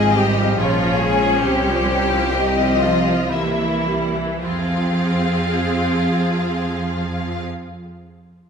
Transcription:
Already playing: double bass section G#1, viola section F3 C4, cello section G#3, violin section G#4 D#5
0.15 viola section C3, cello section G3, violin section G4
0.35 viola section F3
0.56 double bass section A#1, viola section C#3 C#4, cello section F3, violin section F4 C#5
0.79 viola section F3
1.00 viola section C#3, cello section G#3, violin section G#4
1.23 viola section F3
1.41 double bass section C2, viola section C3, cello section G3, violin section G4 C5
1.66 viola section F3
1.89 viola section C3
2.10 viola section F3
2.34 viola section C3 C4, violin section D#5
2.58 viola section F3
2.82 viola section C3, cello section F3, violin section F4
3.08 viola section F3
3.33 viola section C3 A#3, cello section E3, violin section E4 E5
3.59 viola section E3
3.87 viola section G3
4.15 viola section E3
4.41 double bass section F2, cello section F3, viola section C4 G#4, violin section F4 F5

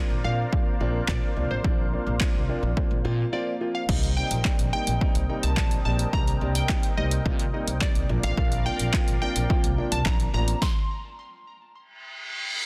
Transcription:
Already playing: grand piano F3 A#3 C4 D4, supersaw synth A#3 A#4 C5 D5 F5, synth pluck D5
0.10 upright bass A#1
0.24 upright bass A#2, grand piano F3 A#3 C4 D4, synth pluck F5
0.52 grand piano F3 A#3 C4 D4, kick
0.80 upright bass A#1, grand piano F3 A#3 C4 D4
1.08 upright bass A#2, grand piano F3 A#3 C4 D4, synth pluck D5, kick, clap
1.36 upright bass C2, grand piano F3 A#3 C4 D4
1.51 upright bass A1, synth pluck C5
1.64 upright bass A#1, grand piano F3 A#3 C4 D4, kick
1.92 grand piano F3 A#3 C4 D4
2.07 upright bass A#1
2.20 grand piano F3 A#3 C4 D4, kick, clap
2.35 upright bass C2
2.49 grand piano F3 A#3 C4 D4
2.63 upright bass A#1
2.77 grand piano F3 A#3 C4 D4, kick
2.91 upright bass A#1
3.05 upright bass A#2, grand piano F3 A#3 C4 F4
3.32 grand piano F3 A#3 C4 F4, synth pluck D5
3.60 grand piano F3 A#3 C4 F4
3.75 synth pluck F5
3.89 upright bass C2, grand piano G3 A#3 C4 D#4, supersaw synth C4 A#4 D#5 G5, kick, crash
4.03 closed hi-hat
4.17 grand piano G3 A#3 C4 D#4, synth pluck G5
4.31 upright bass A#1, closed hi-hat
4.45 grand piano G3 A#3 C4 D4, kick, clap
4.59 upright bass A#1, closed hi-hat
4.73 grand piano G3 A#3 C4 D#4, synth pluck G5
4.87 upright bass A#1, closed hi-hat
5.01 grand piano G3 A#3 C4 D#4, kick
5.15 upright bass C2, closed hi-hat
5.29 grand piano G3 A#3 C4 D#4
5.43 upright bass C2, synth pluck A5, closed hi-hat
5.57 upright bass A#1, grand piano G3 A#3 C4 D4, synth pluck A5, kick, clap
5.71 closed hi-hat
5.85 upright bass A#1, grand piano G3 A#3 C4 D4, synth pluck A5
5.99 closed hi-hat
6.13 upright bass C2, grand piano G3 A#3 C4 D4, synth pluck A#5, kick
6.27 closed hi-hat
6.41 upright bass C2, grand piano G3 A#3 C4 D4
6.55 synth pluck G5, closed hi-hat
6.69 grand piano G3 A#3 C4 D#4, kick, clap
6.83 closed hi-hat
6.97 upright bass C2, grand piano G3 A#3 C4 D#4, synth pluck D#5
7.11 closed hi-hat
7.25 upright bass C3, grand piano G3 A#3 C4 F4, kick
7.39 closed hi-hat
7.53 grand piano G3 A#3 C4 D#4
7.67 upright bass C2, closed hi-hat
7.81 grand piano G3 A#3 C4 D#4, synth pluck D5, kick, clap
7.95 upright bass C2, closed hi-hat
8.09 upright bass A#1, grand piano F3 A#3 C4 D4, supersaw synth A#4 D5 F5
8.23 upright bass A1, synth pluck F5, closed hi-hat
8.37 upright bass A#1, kick
8.52 closed hi-hat
8.66 grand piano F3 A#3 C4 D4, synth pluck G5
8.79 upright bass A#1, closed hi-hat
8.94 grand piano F3 A#3 C4 F4, kick, clap
9.08 upright bass A#1, closed hi-hat
9.22 grand piano F3 A#3 C4 D4, synth pluck G5
9.36 upright bass A#1, closed hi-hat
9.50 grand piano F3 A#3 C4 F4, kick
9.64 upright bass C2, closed hi-hat
9.78 grand piano F3 A#3 C4 D4
9.92 upright bass C2, synth pluck A5, closed hi-hat
10.06 upright bass A#1, grand piano F3 A#3, synth pluck A#5, kick, clap
10.20 closed hi-hat
10.34 upright bass A1, grand piano F3 A#3 C4 D4, synth pluck A#5
10.48 closed hi-hat
10.62 synth pluck C6, kick, snare
11.74 reverse cymbal

